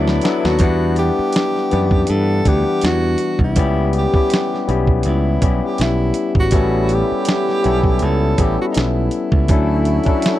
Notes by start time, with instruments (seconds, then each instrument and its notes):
Already playing: picked electric bass D2, tine electric piano F#3 B3 D4 E4 F#4 A4, tenor saxophone E4, tonewheel organ B4 F#5 A5 D6
0.08 snare
0.21 tine electric piano F#3 B3 D4, snare, closed hi-hat
0.26 tine electric piano E4 A4
0.45 picked electric bass D#2, tenor saxophone F#4, snare
0.59 picked electric bass E2, tine electric piano G3 B3 D4, kick, closed hi-hat
0.63 tine electric piano E4 F#5
0.96 tenor saxophone G4, closed hi-hat
1.19 muted picked electric bass stroke
1.32 snare, closed hi-hat
1.56 snare
1.71 picked electric bass F#2, tine electric piano E3 B3 D4 E4 G4, closed hi-hat
1.91 kick
2.07 picked electric bass G2, tenor saxophone A4, closed hi-hat
2.45 picked electric bass D2, tine electric piano G3 B3 D4 E4 F#5, tenor saxophone G4, kick, closed hi-hat
2.81 picked electric bass E2, tenor saxophone F#4, snare, closed hi-hat
3.18 closed hi-hat
3.39 picked electric bass C2, kick
3.44 tenor saxophone E4
3.56 picked electric bass C#2, tine electric piano G3 B3 C#4 E4 G4, kick, closed hi-hat
3.93 closed hi-hat
3.98 tenor saxophone G4
4.13 tine electric piano G3 B3 C#4 E4 G4, muted picked electric bass stroke, kick
4.30 snare, closed hi-hat
4.54 snare
4.67 picked electric bass B1, tine electric piano G3 B3 C#4 E4 G4, closed hi-hat
4.87 kick
5.03 picked electric bass C#2, closed hi-hat
5.08 tenor saxophone E4
5.41 picked electric bass B1, tine electric piano G3 B3 C#4 E4 G4, kick, closed hi-hat
5.66 tenor saxophone G4
5.78 picked electric bass B1, tenor saxophone E4, snare, closed hi-hat
6.14 closed hi-hat
6.35 picked electric bass G#1, kick
6.40 tenor saxophone F#4
6.51 picked electric bass A1, tine electric piano G3 B3 C#4 E4 A4, trombone section B3 C#4 E4, kick, closed hi-hat
6.89 closed hi-hat
6.93 tenor saxophone G4
7.12 muted picked electric bass stroke
7.25 snare, closed hi-hat
7.49 snare
7.63 picked electric bass B1, tine electric piano G3 B3 C#4 E4 A4, closed hi-hat
7.84 kick
7.99 picked electric bass C#2, closed hi-hat
8.04 tenor saxophone A4
8.37 picked electric bass A1, tine electric piano G3 B3 C#4 E4 A4, kick, closed hi-hat
8.42 tenor saxophone G4
8.61 tenor saxophone F#4
8.71 tenor saxophone D#4, closed hi-hat
8.77 picked electric bass B1, tenor saxophone E4, snare
9.11 closed hi-hat
9.32 picked electric bass C#2, kick
9.48 picked electric bass D2, tine electric piano F#3 C#4 D4 E4, trombone section A3 C#4 F#4, kick, closed hi-hat
9.53 tine electric piano A4
9.85 closed hi-hat
10.04 tine electric piano F#3 C#4 D4, muted picked electric bass stroke, kick, closed hi-hat
10.08 tine electric piano E4 A4
10.22 snare, closed hi-hat